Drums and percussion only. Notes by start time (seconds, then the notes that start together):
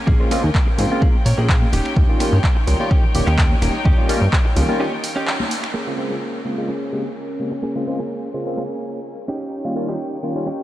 0.07 kick, tambourine, low conga
0.31 finger snap, open hi-hat, tambourine, high conga
0.44 tambourine
0.54 kick, clap, tambourine
0.78 open hi-hat, tambourine, low conga
0.90 tambourine, high conga
1.01 kick, tambourine
1.25 open hi-hat, tambourine
1.38 tambourine
1.49 kick, clap
1.62 high conga
1.72 open hi-hat, tambourine
1.85 finger snap, tambourine
1.96 kick, tambourine, low conga
2.19 finger snap, open hi-hat, tambourine, high conga
2.32 tambourine
2.44 kick, clap, tambourine
2.67 open hi-hat, tambourine
2.80 tambourine, high conga
2.91 kick, tambourine
3.04 low conga
3.15 open hi-hat, tambourine
3.27 finger snap, tambourine
3.38 kick, clap
3.51 high conga
3.62 finger snap, open hi-hat, tambourine
3.75 tambourine
3.85 kick, tambourine, low conga
4.09 finger snap, open hi-hat, tambourine, high conga
4.21 tambourine
4.33 kick, clap
4.56 open hi-hat, tambourine, low conga
4.69 tambourine, high conga
4.81 tambourine
5.04 open hi-hat, tambourine
5.16 tambourine
5.27 clap, tambourine
5.40 high conga
5.51 open hi-hat, tambourine
5.63 finger snap, tambourine
5.75 crash